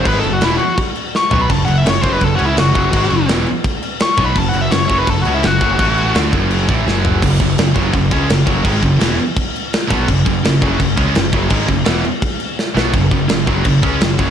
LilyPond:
<<
  \new Staff \with { instrumentName = "Lead electric guitar" } { \time 4/4 \key fis \minor \tempo 4 = 168 \tuplet 3/2 { b'8 a'8 fis'8 e'8 fis'8. r16 } r4 \tuplet 3/2 { cis'''4 b''8 } | \tuplet 3/2 { a''8 fis''8 e''8 cis''8 bis'8 b'8 a'8 fis'8 e'8 } fis'4~ | fis'4 r2 \tuplet 3/2 { cis'''4 b''8 } | \tuplet 3/2 { a''8 fis''8 e''8 cis''8 cis''8 b'8 a'8 fis'8 e'8 } fis'4~ |
fis'4 r2. | r1 | r1 | r1 |
r1 | r1 | }
  \new Staff \with { instrumentName = "Distorted electric guitar" } { \clef bass \time 4/4 \key fis \minor <gis, dis gis>8 <fis, cis>8 <e, b, e>8 r2 <b, fis b>8 | <fis, cis>8 <fis, cis>8 <fis, cis>8 <fis, cis fis>8 <fis, cis>8 <cis gis cis'>8 <fis, cis>8 <fis, cis fis>8 | <gis, dis gis>8 <fis, cis>8 <e, b, e>8 r2 <b, fis b>8 | <fis, cis>8 <fis, cis>8 <fis, cis>8 <fis, cis fis>8 <fis, cis>8 <cis gis cis'>8 <fis, cis>8 <fis, cis fis>8 |
<a, e a>4 <d a d'>8 <fis, cis fis>4 <a, e a>8 <fis, cis fis>4 | <fis, cis>8 <fis, cis>8 <fis, cis>8 <fis, cis fis>8 <fis, cis>8 <cis gis cis'>8 <fis, cis>8 <fis, cis fis>8 | <gis, dis gis>8 <fis, cis>8 <e, b, e>8 r2 <b, fis b>8 | <fis, cis>8 <fis, cis>8 <fis, cis>8 <fis, cis fis>8 <fis, cis>8 <cis gis cis'>8 <fis, cis>8 <fis, cis fis>8 |
<gis, dis gis>8 <fis, cis>8 <e, b, e>8 r2 <b, fis b>8 | <fis, cis>8 <fis, cis>8 <fis, cis>8 <fis, cis fis>8 <fis, cis>8 <cis gis cis'>8 <fis, cis>8 <fis, cis fis>8 | }
  \new Staff \with { instrumentName = "Picked electric bass" } { \clef bass \time 4/4 \key fis \minor gis,,8 fis,,8 e,,8 r2 b,,8 | fis,,8 fis,,8 fis,,8 fis,,8 fis,,8 cis,8 fis,,8 fis,,8 | gis,,8 fis,,8 e,,8 r2 b,,8 | fis,,8 fis,,8 fis,,8 fis,,8 fis,,8 cis,8 fis,,8 fis,,8 |
a,,4 d,8 fis,,4 a,,8 fis,,4 | fis,,8 fis,,8 fis,,8 fis,,8 fis,,8 cis,8 fis,,8 fis,,8 | gis,,8 fis,,8 e,,8 r2 b,,8 | fis,,8 fis,,8 fis,,8 fis,,8 fis,,8 cis,8 fis,,8 fis,,8 |
gis,,8 fis,,8 e,,8 r2 b,,8 | fis,,8 fis,,8 fis,,8 fis,,8 fis,,8 cis,8 fis,,8 fis,,8 | }
  \new DrumStaff \with { instrumentName = "Drums" } \drummode { \time 4/4 <cymc bd>8 cymc8 <cymc sn>8 cymc8 <cymc bd>8 cymc8 sn8 tomfh8 | <cymc bd>8 cymc8 <cymc sn>8 <cymc bd>8 <cymc bd>8 cymc8 <cymc sn>8 <cymc bd>8 | <cymc bd>8 cymc8 <cymc sn>8 cymc8 <cymc bd>8 cymc8 <cymc sn>8 <cymc bd>8 | <cymc bd>8 cymc8 <cymc sn>8 <cymc bd>8 <cymc bd>8 cymc8 <cymc sn>8 <cymc bd>8 |
<cymc bd>8 cymc8 <cymc sn>8 <cymc bd>8 cymc8 <cymc bd>8 sn8 tomfh8 | <cymc bd>8 <cymc bd>8 <cymc sn>8 <cymc bd>8 <cymc bd>8 <cymc bd>8 <cymc sn>8 <cymc bd>8 | <cymc bd>8 <cymc bd>8 <cymc sn>8 cymc8 <cymc bd>8 cymc8 <cymc sn>8 <cymc bd>8 | <cymc bd>8 <cymc bd>8 <cymc sn>8 <cymc bd>8 <cymc bd>8 <cymc bd>8 <cymc sn>8 <cymc bd>8 |
<cymc bd>8 <cymc bd>8 <cymc sn>8 cymc8 <cymc bd>8 cymc8 sn8 sn8 | <cymc bd>8 <cymc bd>8 <cymc sn>8 <cymc bd>8 <cymc bd>8 <cymc bd>8 <cymc sn>8 <cymc bd>8 | }
>>